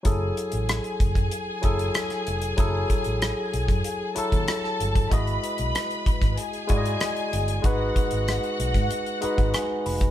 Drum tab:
HH |x-xxxxxxx-xxxxxx|x-xxx-xxx-xxx-xx|xxxxxxxxxxxxxxxx|x-xxxxxxxxxxx-ox|
SD |----r-------rr--|----r--r----rr--|----r--r----r---|----r--r----r---|
BD |o-----oo--o-----|o-o----o---o---o|o-----oo--o-----|o-o----o---o---o|